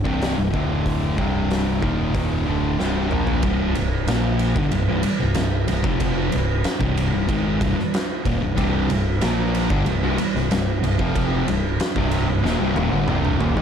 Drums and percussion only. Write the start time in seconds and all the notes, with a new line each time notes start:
0.05 kick
0.22 snare, open hi-hat
0.54 kick
0.86 kick, open hi-hat
1.18 kick
1.51 snare, open hi-hat
1.83 kick
2.14 kick, open hi-hat
2.80 snare
3.11 mid tom
3.27 floor tom
3.43 kick, ride
3.75 ride
4.08 snare, ride
4.39 ride
4.56 kick
4.72 ride
5.03 ride
5.34 snare, ride
5.68 ride
5.84 kick
6.00 kick, ride
6.32 ride
6.64 snare, ride
6.81 kick
6.97 ride
7.29 kick, ride
7.61 kick, ride
7.79 snare
7.94 snare, ride
8.26 kick, ride
8.58 kick, ride
8.90 ride
9.21 snare, ride
9.55 ride
9.70 kick
9.86 ride
10.18 ride
10.36 snare
10.51 snare, ride
10.84 ride
10.99 kick
11.16 kick, ride
11.48 ride
11.80 snare, ride
11.96 kick
12.11 ride
12.45 snare
12.76 high tom
13.08 mid tom
13.25 mid tom
13.40 floor tom
13.57 floor tom